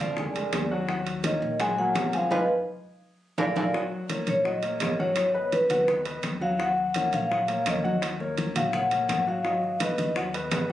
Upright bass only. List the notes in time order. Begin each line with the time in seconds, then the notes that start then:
0.00 F2
0.35 F2
0.53 D#2
1.42 A#1
1.95 F1
2.31 F2
3.38 A#1
3.55 A#1
4.27 A#1
4.80 G#1
5.69 D#2
6.23 D#2
7.12 A#1
7.66 D#2
8.55 A#1
9.09 G#1
9.98 D#2
10.51 G#1